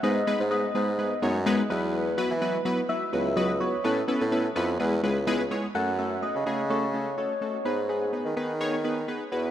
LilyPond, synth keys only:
\new Staff \with { instrumentName = "Synth keys" } { \time 4/4 \key gis \phrygian \tempo 4 = 126 <gis b dis' gis' b'>8 <gis b dis' gis' b'>8 <gis b dis' gis' b'>8 <gis b dis' gis' b'>8 <gis b dis' gis' b'>8 <gis b dis' gis' cis''>8 <gis b dis' gis' b'>8 <fis b e' fis' b'>8~ | <fis b e' fis' b'>8 <fis b e' fis' b'>8 <fis b e' fis' b'>8 <fis b e' fis' b'>8 <fis b e' fis' b'>8 <fis b e' fis' b'>8 <fis b e' fis' b'>8 <fis b e' fis' b'>8 | <b cis' e' a' b'>8 <b cis' e' a' b'>8 <b cis' e' a' b'>8 <b cis' e' a' b'>8 <gis b e' gis' b'>8 <gis b e' gis' b'>8 <gis b e' gis' b'>8 <gis b e' gis' cis''>8 | <a cis' fis' a'>8 <a cis' fis' a'>8 <a cis' fis' b'>8 <a cis' fis' gis'>8 <a cis' fis' a'>8 <a cis' fis' a'>8 <a cis' fis' a'>8 <a cis' fis' a'>8 |
<b dis' gis' b'>8 <b dis' gis' b'>8 <b dis' gis' b'>8 <b dis' gis' b'>8 <b dis' gis' cis''>8 <b dis' gis' b'>8 <b dis' gis' b'>8 <b e' fis' b'>8 | }